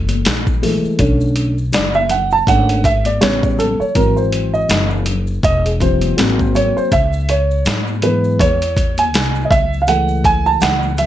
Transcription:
0.00 0.21 F#1 loud
0.00 0.60 E3 medium
0.00 0.61 G#3 soft
0.00 0.61 A3 medium
0.08 closed hi-hat medium
0.08 high conga medium
0.08 maracas soft
0.25 0.81 A#1 medium
0.25 snare loud
0.25 closed hi-hat medium
0.25 maracas medium
0.47 kick medium
0.47 maracas soft
0.62 0.95 E3 soft
0.62 0.96 G#3 soft
0.62 0.96 A3 medium
0.62 open hi-hat medium
0.62 high conga medium
0.62 low conga medium
0.62 maracas soft
0.84 muted upright bass stroke soft
0.84 maracas soft
0.99 1.70 B1 loud
0.99 1.50 D3 medium
0.99 1.51 A3 medium
0.99 1.51 C#4 medium
0.99 kick loud
0.99 closed hi-hat medium
0.99 maracas medium
1.21 maracas soft
1.36 closed hi-hat medium
1.36 maracas soft
1.58 maracas soft
1.73 2.44 F#1 medium
1.73 1.96 D5 medium
1.73 snare loud
1.73 closed hi-hat medium
1.73 low conga medium
1.73 maracas medium
1.94 2.11 E5 loud
1.94 high conga medium
1.94 maracas soft
2.09 2.30 F#5 medium
2.09 closed hi-hat medium
2.09 low conga medium
2.09 maracas soft
2.31 2.48 A5 loud
2.31 maracas soft
2.47 3.18 G#1 loud
2.47 2.81 D3 medium
2.47 2.81 A3 medium
2.47 2.81 C#4 medium
2.47 2.82 F#5 loud
2.47 kick loud
2.47 closed hi-hat medium
2.47 high conga medium
2.47 maracas medium
2.69 closed hi-hat medium
2.69 maracas soft
2.84 3.07 E5 medium
2.84 kick medium
2.84 closed hi-hat medium
2.84 maracas soft
3.05 3.22 D5 medium
3.05 closed hi-hat soft
3.05 high conga medium
3.05 maracas soft
3.21 3.77 A1 medium
3.21 3.72 C#3 medium
3.21 3.72 G3 medium
3.21 3.73 B3 medium
3.21 3.41 C#5 loud
3.21 snare loud
3.21 closed hi-hat medium
3.21 maracas medium
3.43 3.59 C#5 medium
3.43 kick medium
3.43 maracas soft
3.59 3.80 A4 medium
3.59 closed hi-hat medium
3.59 high conga medium
3.59 low conga medium
3.59 maracas soft
3.80 3.96 C#5 medium
3.80 muted upright bass stroke medium
3.80 maracas soft
3.95 4.66 G#1 medium
3.95 5.02 E3 medium
3.95 5.02 F#3 soft
3.95 5.03 C4 medium
3.95 4.17 A#4 medium
3.95 kick loud
3.95 closed hi-hat medium
3.95 maracas medium
4.16 4.55 C5 medium
4.16 maracas soft
4.32 closed hi-hat medium
4.32 maracas soft
4.54 4.88 D#5 medium
4.54 maracas soft
4.69 5.40 F#1 medium
4.69 snare loud
4.69 closed hi-hat medium
4.69 low conga medium
4.69 maracas medium
4.90 high conga medium
4.90 maracas soft
5.06 closed hi-hat medium
5.06 low conga medium
5.06 maracas soft
5.27 maracas medium
5.43 6.14 E1 loud
5.43 5.66 D#5 loud
5.43 kick loud
5.43 closed hi-hat medium
5.43 high conga soft
5.43 maracas medium
5.65 5.70 G#4 medium
5.65 closed hi-hat medium
5.65 maracas soft
5.80 6.14 E3 soft
5.80 6.14 F#3 soft
5.80 6.14 C4 soft
5.80 6.51 C5 medium
5.80 kick medium
5.80 closed hi-hat medium
5.80 maracas soft
6.01 closed hi-hat soft
6.01 high conga medium
6.01 maracas soft
6.17 6.73 G#1 medium
6.17 6.87 F#3 medium
6.17 6.88 A#3 medium
6.17 6.88 C4 medium
6.17 snare loud
6.17 closed hi-hat medium
6.17 maracas medium
6.39 kick medium
6.39 maracas soft
6.55 6.77 C#5 loud
6.55 closed hi-hat medium
6.55 high conga medium
6.55 low conga medium
6.55 maracas soft
6.77 6.92 C5 medium
6.77 muted upright bass stroke soft
6.77 maracas soft
6.92 7.62 C#2 loud
6.92 7.30 E5 medium
6.92 kick loud
6.92 closed hi-hat medium
6.92 maracas medium
7.13 maracas soft
7.29 8.05 C#5 medium
7.29 closed hi-hat medium
7.29 maracas soft
7.51 maracas soft
7.65 8.36 G#2 loud
7.65 snare loud
7.65 closed hi-hat medium
7.65 low conga medium
7.65 maracas medium
7.87 high conga medium
7.87 maracas soft
8.02 8.54 E3 medium
8.02 8.54 G#3 soft
8.02 8.55 B3 medium
8.02 8.41 B4 medium
8.02 closed hi-hat medium
8.02 low conga medium
8.02 maracas soft
8.24 maracas soft
8.40 9.14 E2 loud
8.40 9.00 C#5 loud
8.40 kick loud
8.40 closed hi-hat medium
8.40 high conga medium
8.40 maracas medium
8.62 closed hi-hat medium
8.62 maracas soft
8.77 kick medium
8.77 closed hi-hat medium
8.77 maracas soft
8.98 9.47 G#5 medium
8.98 closed hi-hat medium
8.98 high conga medium
8.98 maracas soft
9.14 9.49 C2 medium
9.14 snare loud
9.14 closed hi-hat medium
9.14 maracas medium
9.35 maracas soft
9.45 9.51 D#5 medium
9.51 10.58 C#2 medium
9.51 9.80 E5 loud
9.51 kick loud
9.51 closed hi-hat medium
9.51 high conga medium
9.51 low conga medium
9.51 maracas soft
9.73 maracas soft
9.82 9.88 F5 medium
9.87 11.06 E3 medium
9.87 11.06 G#3 soft
9.87 11.06 A3 medium
9.87 10.26 F#5 loud
9.87 closed hi-hat medium
9.87 maracas medium
10.08 maracas soft
10.24 10.47 G#5 loud
10.24 kick medium
10.24 closed hi-hat medium
10.24 maracas soft
10.46 10.62 A5 loud
10.46 maracas soft
10.61 11.06 C#2 loud
10.61 10.96 F#5 loud
10.61 snare loud
10.61 closed hi-hat medium
10.61 low conga medium
10.61 maracas medium
10.82 high conga medium
10.82 maracas soft
10.98 11.06 E5 medium
10.98 closed hi-hat medium
10.98 low conga medium
10.98 maracas soft

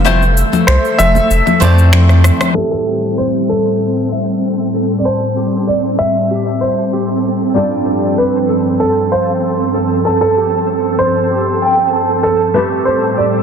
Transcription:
0.00 0.43 F1 medium
0.00 2.57 E3 medium
0.00 2.57 E6 medium
0.04 0.22 A3 medium
0.04 2.53 A3 medium
0.04 0.22 C4 medium
0.04 0.22 E4 medium
0.04 0.22 F4 medium
0.04 2.53 A4 medium
0.04 0.23 C5 loud
0.04 2.53 E5 medium
0.04 low conga medium
0.04 cabasa soft
0.22 cabasa soft
0.37 cabasa medium
0.53 high conga medium
0.53 low conga medium
0.53 cabasa soft
0.67 0.78 C2 medium
0.67 1.00 C5 medium
0.67 finger snap loud
0.67 cabasa soft
0.85 cabasa soft
0.98 1.19 F1 medium
0.98 1.57 E5 loud
0.98 low conga medium
0.98 cabasa medium
1.15 high conga medium
1.15 low conga medium
1.15 cabasa soft
1.30 1.41 F1 medium
1.30 cabasa soft
1.47 high conga medium
1.47 low conga medium
1.47 cabasa soft
1.60 2.31 F2 loud
1.60 2.52 F3 medium
1.60 2.51 A3 medium
1.60 2.51 C4 medium
1.60 2.52 E4 medium
1.60 2.20 C5 medium
1.60 2.53 D5 medium
1.60 cabasa medium
1.78 cabasa soft
1.93 finger snap loud
1.93 cross-stick medium
1.93 low conga medium
1.93 cabasa soft
2.09 cross-stick medium
2.09 cabasa soft
2.24 cross-stick medium
2.24 cabasa medium
2.41 cross-stick medium
2.41 low conga medium
2.41 cabasa soft
2.54 7.52 A2 medium
2.54 7.52 G3 medium
2.54 7.51 A3 medium
2.54 7.51 C4 medium
2.54 13.43 C4 medium
2.54 12.51 C4 medium
2.54 7.52 E4 medium
2.54 2.84 G4 medium
2.54 7.52 G4 medium
2.54 2.70 A4 medium
2.54 13.43 A4 medium
2.54 5.03 C5 medium
2.54 7.53 C5 medium
2.54 cabasa soft
2.71 3.14 A4 medium
2.71 cabasa soft
2.87 3.16 G4 medium
2.87 cabasa medium
3.18 3.48 G4 medium
3.18 3.25 C5 medium
3.18 cabasa soft
3.49 3.67 A4 medium
3.49 4.08 A4 medium
3.49 cabasa medium
3.66 cabasa soft
3.81 cabasa soft
3.97 cabasa soft
4.12 4.29 E5 medium
4.12 cabasa medium
4.43 cabasa soft
4.60 cabasa soft
4.74 4.92 A4 medium
4.74 cabasa medium
4.91 cabasa soft
4.98 5.05 D5 medium
5.05 5.64 C5 medium
5.05 5.35 A5 medium
5.05 cabasa soft
5.36 5.66 G4 medium
5.36 cabasa medium
5.54 cabasa soft
5.67 6.00 D5 medium
5.67 cabasa soft
5.99 6.63 E5 loud
5.99 cabasa medium
6.16 cabasa soft
6.31 6.59 G4 medium
6.31 cabasa soft
6.47 cabasa soft
6.61 7.20 C5 medium
6.61 6.79 E5 medium
6.61 cabasa medium
6.79 cabasa soft
6.93 7.23 G4 medium
6.93 cabasa soft
7.10 cabasa soft
7.24 cabasa medium
7.41 cabasa soft
7.54 12.52 G2 medium
7.54 12.52 F3 medium
7.54 12.51 G3 medium
7.54 12.51 C4 medium
7.54 12.52 D4 medium
7.54 12.52 F4 medium
7.54 7.84 G4 medium
7.54 12.52 A4 medium
7.54 12.53 A4 medium
7.54 8.20 D5 medium
7.54 cabasa soft
7.72 cabasa soft
7.87 8.16 G4 medium
7.87 cabasa medium
8.03 cabasa soft
8.18 8.48 G4 medium
8.18 8.82 B4 medium
8.18 cabasa soft
8.35 cabasa soft
8.49 8.67 A4 medium
8.49 cabasa medium
8.66 cabasa soft
8.80 9.12 A4 medium
8.80 cabasa soft
8.97 cabasa soft
9.12 9.70 C5 medium
9.12 9.29 F5 medium
9.12 cabasa medium
9.28 cabasa soft
9.43 cabasa soft
9.59 cabasa soft
9.74 9.92 A4 medium
9.74 cabasa medium
9.91 cabasa soft
10.05 10.20 A4 medium
10.05 10.35 A5 medium
10.05 cabasa soft
10.21 11.01 A4 medium
10.21 cabasa soft
10.37 10.67 G4 medium
10.37 cabasa medium
10.53 cabasa soft
10.68 cabasa soft
10.85 cabasa soft
10.99 12.28 C5 medium
10.99 cabasa medium
11.16 cabasa soft
11.31 11.59 G4 medium
11.31 cabasa soft
11.47 cabasa soft
11.62 11.92 G5 medium
11.62 cabasa medium
11.79 cabasa soft
11.93 12.21 A5 medium
11.93 cabasa soft
12.10 cabasa soft
12.23 12.56 A4 medium
12.23 cabasa medium
12.41 cabasa soft
12.54 13.43 A2 medium
12.54 13.43 G3 medium
12.54 13.43 A3 medium
12.54 13.43 C4 medium
12.54 12.57 E4 medium
12.54 12.84 G4 medium
12.54 13.43 G4 medium
12.54 13.43 A4 medium
12.54 12.61 B4 medium
12.54 cabasa soft
12.72 cabasa soft
12.85 13.17 G4 medium
12.85 13.15 C5 medium
12.85 cabasa medium
13.04 cabasa soft
13.17 13.43 G4 medium
13.17 13.43 D5 medium
13.17 cabasa soft
13.35 cabasa soft

